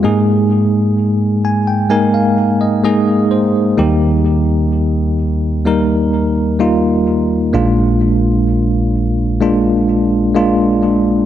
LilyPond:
<<
  \new Staff \with { instrumentName = "Tine electric piano" } { \time 4/4 \key ees \major \tempo 4 = 64 << { r4. aes''16 g''16 aes''16 f''8 ees''16 ees''8 c''8 | r1 | r1 | } \\ { <aes bes ees' aes'>2 <aes bes ees' bes'>4 <aes bes ees' aes'>4 | <g bes ees' g'>2 <g bes ees' bes'>4 <g bes ees' f'>4 | <aes bes d' f'>2 <aes bes d' f'>4 <aes bes d' f'>4 | } >> }
  \new Staff \with { instrumentName = "Tine electric piano" } { \clef bass \time 4/4 \key ees \major aes,1 | <ees, ees>1 | <bes,, bes,>1 | }
>>